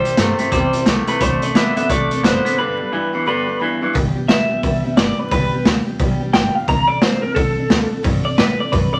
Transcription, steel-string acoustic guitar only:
0.04 C4 E4 G4
0.17 G3 C4 E4 G4
0.39 C4 E4 G4
0.52 C3 G3 C4 E4 G4
0.73 C4 E4 G4
0.86 G3 C4 G4
1.08 C4 E4 G4
1.20 D3 F#3 C4 D4 A4
1.41 C4 D4 A4
1.54 F#3 C4 D4
1.76 C4 D4 A4
1.88 D3 F#3 C4 D4 A4
2.10 C4 D4 A4
2.23 F#3 C4 D4
2.44 C4 D4 A4
2.57 G2 D3 G3 B3 D4 G4
2.79 G3 B3 D4 G4
2.92 G3 B3 D4 G4
3.13 G3 B3 D4 G4
3.26 G2 D3 G3 B3 D4 G4
3.46 G3 B3 D4 G4
3.59 G3 B3 D4 G4
3.81 G3 B3 D4 G4
3.93 G2 D3 G3 B3 D4 G4
4.15 G3 B3 D4 G4
4.28 G3 B3 D4 G4
4.49 G3 B3 D4 G4
4.63 G2 D3 G3 B3 D4 G4
4.84 G3 B3 D4 G4
4.97 G3 B3 G4
5.18 G3 B3 D4 G4
5.31 G2 D3 G3 B3 D4 G4
5.52 G3 B3 D4 G4
5.65 G3 B3 D4 G4
5.86 G3 B3 D4 G4
5.99 G2 D3 G3 B3 D4 G4
6.21 G3 B3 D4 G4
6.33 G3 D4
6.54 G3 B3 D4 G4
6.67 D3 F#3 C4 D4 A4
6.89 C4 D4 A4
7.02 F#3 C4 D4 A4
7.22 C4 D4 A4
7.35 D3 F#3 C4 D4 A4
7.57 C4 D4 A4
7.69 F#3 C4 D4
7.90 C4 D4 A4
8.03 D3 F#3 C4 D4 A4
8.24 C4 D4 A4
8.37 F#3 D4
8.59 C4 D4 A4
8.71 D3 F#3 C4 D4 A4
8.92 C4 D4 A4

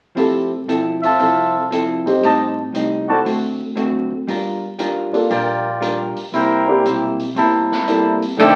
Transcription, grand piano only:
0.16 C4 E4 G4 A4
2.06 C4 D#4 G4 C5
3.08 C4 E4 F#4 A4
5.13 A#3 D4 F4 A4
6.67 A#3 D4 E4 G4
7.87 A#3 D4 E4 A4

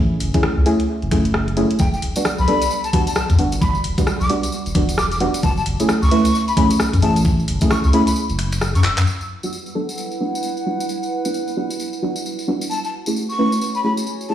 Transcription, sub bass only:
Already playing: A1
0.20 F#1
0.57 C#2
1.02 F#1
1.80 E1
2.02 E1
2.39 B1
3.30 E2
3.39 G1
3.84 E1
4.21 B1
4.66 E1
5.43 F#1
5.66 F#1
6.02 C#2
6.93 F#2
7.02 A1
7.48 F#1
7.84 C#2
8.30 F#1
8.75 F#2
8.84 E1
8.98 F#2

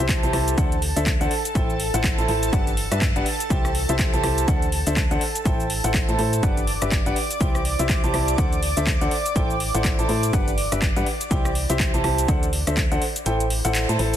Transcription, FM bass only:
0.00 C2
0.23 C2
0.33 C2
0.58 D2
0.96 D2
1.21 D2
1.55 A1
1.94 A1
2.18 A1
2.28 A1
2.53 G1
2.92 G2
3.16 G1
3.50 C2
3.89 C2
4.14 C2
4.24 C2
4.48 D2
4.87 D2
5.11 D2
5.45 A1
5.84 A1
6.09 A2
6.19 A2
6.43 G1
6.82 G1
7.06 G1
7.41 C2
7.79 C2
8.04 C2
8.14 C2
8.38 D2
8.77 D2
9.01 D2
9.36 A1
9.75 A1
9.99 A1
10.09 A2
10.33 G1
10.72 G1
10.96 G2
11.31 C2
11.70 C2
11.94 C2
12.04 C2
12.28 D2
12.67 D2
12.92 D2
13.26 A1
13.65 A1
13.89 A2
13.99 A1

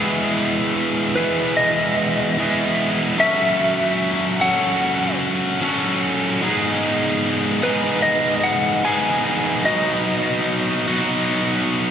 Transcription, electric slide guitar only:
1.16 B4
1.57 D#5
3.20 E5
4.41 F#5
7.63 B4
8.02 D#5
8.43 F#5
8.85 G#5
9.65 D#5

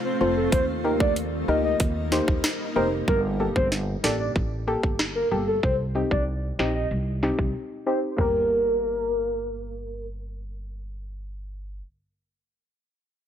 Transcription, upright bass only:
0.21 F1
0.52 D#2
1.48 D2
1.80 D#2
2.28 D#2
2.76 F1
3.08 G1
3.56 G1
4.04 A1
4.36 A1
4.83 G1
5.31 G1
5.63 C2
6.11 C2
6.59 A#1
6.91 C2
7.39 C2
8.18 G1

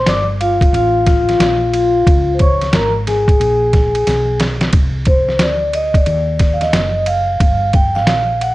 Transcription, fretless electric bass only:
0.06 G1
0.73 A1
1.39 A#1
2.06 C#2
2.73 G#1
3.40 A#1
4.07 B1
4.73 C2
5.39 D2
6.07 D#2
6.73 F#1
7.40 G1
8.06 A#1

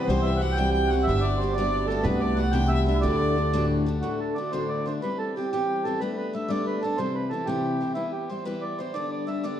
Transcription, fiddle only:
Already playing: B4
0.09 C5
0.27 E5
0.42 F#5
0.58 G5
0.74 G5
0.90 F#5
1.07 E5
1.25 D5
1.56 D5
1.88 A4
2.04 B4
2.21 D5
2.39 F#5
2.53 G5
2.74 E5
2.88 E5
3.03 D5

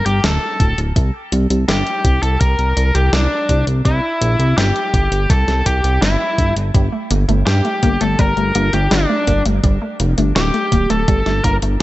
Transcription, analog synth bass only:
0.06 G1
0.24 D1
0.60 D1
0.78 D1
0.96 C2
1.32 C2
1.50 C2
1.68 G1
2.05 C2
2.23 C2
2.41 C2
2.59 C2
2.77 C2
2.95 C2
3.13 C2
3.49 C2
3.67 C2
3.85 C2
4.21 A#1
4.39 C2
4.57 G1
4.94 G1
5.12 G1
5.30 C2
5.48 C2
5.66 C2
5.84 C2
6.02 G1
6.38 G1
6.56 G1
6.74 G1
7.11 G1
7.29 G1
7.47 G2
7.83 G1
8.01 G1
8.19 G1
8.37 G1
8.55 G1
8.73 G1
8.91 G1
9.27 G1
9.46 G1
9.64 G1
10.00 F1
10.18 G1
10.36 D1
10.72 D1
10.90 D1
11.08 G1
11.26 G1
11.44 G1
11.62 G1

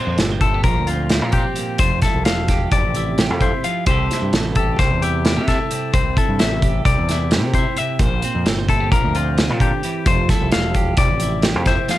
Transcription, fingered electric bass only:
0.07 F2
0.18 G1
0.63 A#1
0.76 D2
1.22 A#2
1.79 F1
2.14 C2
2.26 E1
2.72 F1
2.84 A1
3.31 F2
3.87 C2
4.22 G2
4.33 A1
4.79 C2
4.91 E2
5.37 C3
5.94 C2
6.29 G2
6.41 A1
6.85 C2
6.98 E2
7.44 C3
8.00 A#1
8.35 F2
8.47 G1
8.91 A#1
9.04 D2
9.50 A#2
10.06 F1
10.41 C2
10.53 E1
10.98 F1
11.11 A1
11.56 F2

